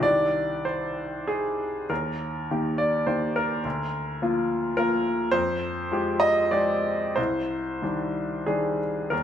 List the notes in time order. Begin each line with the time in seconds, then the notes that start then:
0.00 C2 D#3 D4 G4 D5
0.65 C5
1.27 G#4
1.90 D#2 A#4
2.51 D#3 A#3 G4
2.78 D5
3.07 D#3 A#3 G4 C5
3.36 A#4
3.65 D2
4.22 F3 A#3 F4
4.77 F3 A#3 F4 A#4
5.31 F2 C5
5.92 F3 G#3 G4
6.20 D#5
6.51 F3 G#3 G4 D5
7.16 C2 C5
7.82 D#3 G3 D4
8.46 D#3 G3 D4 G#4
9.10 D#2 A#4